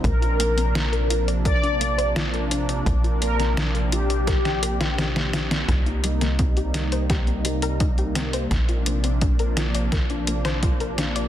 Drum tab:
HH |xxxxxxxxxxxxxxxx|xxxxxxxxxxxxxxxx|xxxxxxxxxxxxxxxx|xxxxxxxxxxxxxxxx|
SD |----o-------o---|---oo---oo-ooooo|o--o--o-o-----o-|o-----o-o--o--o-|
BD |o-------o-------|o-------o-------|o---o---o---o---|o---o---o---o---|